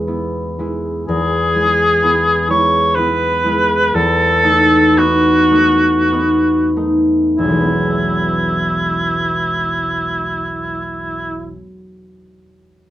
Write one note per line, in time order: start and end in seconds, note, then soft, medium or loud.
0.00 1.07 E2 soft
0.00 0.58 G#3 soft
0.00 1.10 F#4 soft
0.00 1.02 G#4 medium
0.00 2.98 B4 soft
0.00 2.96 E5 soft
0.00 1.10 F#5 medium
0.00 0.52 B5 medium
0.07 2.01 B3 soft
0.07 0.58 E4 soft
0.59 1.54 G#3 soft
0.59 1.54 E4 soft
1.07 3.93 E2 soft
1.07 2.45 G#4 medium
1.55 2.49 G#3 soft
1.55 2.02 E4 soft
2.03 2.97 B3 soft
2.03 2.49 E4 soft
2.50 3.44 G#3 soft
2.50 2.97 E4 soft
2.50 2.97 C#5 medium
2.95 4.96 B3 soft
2.95 3.45 E4 soft
2.95 3.96 B4 medium
3.45 3.98 G#3 soft
3.45 3.98 E4 soft
3.95 7.44 E2 soft
3.95 4.99 A4 medium
4.44 5.50 A3 soft
4.44 4.96 D#4 soft
4.97 6.11 B3 soft
4.97 5.50 D#4 soft
4.97 6.78 F#4 medium
5.51 6.75 A3 soft
5.51 6.11 D#4 soft
6.12 7.59 B3 soft
6.12 6.75 D#4 soft
6.76 7.43 A3 soft
6.76 7.43 D#4 soft
7.37 11.51 E1 soft
7.37 11.50 E4 soft
7.44 11.56 B1 soft
7.50 11.62 E3 soft
7.55 11.68 G#3 soft
7.60 11.73 B3 soft
7.66 11.78 E4 soft